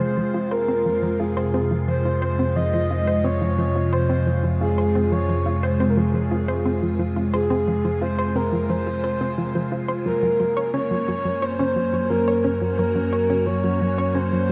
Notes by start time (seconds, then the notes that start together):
Already playing: F2 C3 G#3 F4 C5 G#5
0.00 F3
0.17 F3
0.34 F4
0.51 A#4 C5
0.68 C4
0.86 F3
1.02 F3
1.20 F4 G#4
1.37 C5
1.54 C4
1.71 F3
1.88 F3 C5
2.05 F4
2.22 C5
2.39 C4
2.56 F3 D#5
2.74 F3
2.91 F4
3.07 C5
3.24 C4 C#5
3.41 F3
3.58 F3
3.75 F4
3.93 C5
4.10 C4
4.27 F3
4.44 F3
4.61 F4 G#4
4.78 C5
4.95 C4
5.12 F3 C#5
5.29 F3
5.46 F4
5.63 C5
5.80 C4
5.90 A#4
5.97 F3 G#4
6.14 F3
6.31 F4
6.48 C5
6.65 C4
6.82 F3
6.99 F3
7.16 F4
7.33 G#4 C5
7.50 C4
7.68 F3
7.85 F3
8.01 F4 C5
8.19 C5
8.36 C4 A#4
8.53 F3
8.70 F3 C5
8.87 F4
9.04 C5
9.21 C4
9.38 F3
9.55 F3
9.72 F4
9.88 C5
10.06 F#2 F#3 A#3 A#4
10.23 F#3
10.36 F#3 C#4
10.57 C#5
10.74 C#4 C#5
10.91 F#3
11.08 F#3
11.25 F#3
11.42 C5 C#5
11.59 C#4 F#4
11.76 F#3
11.93 F#3
12.10 F#3 A#4
12.28 C#5
12.44 C#4
12.62 F#3
12.72 C5
12.78 F#3 A#4
12.95 F#3
13.13 C#5
13.30 C#4
13.46 F#3 C#5
13.64 F#3
13.81 F#3
13.98 C#5
14.14 C#4 C5
14.32 F#3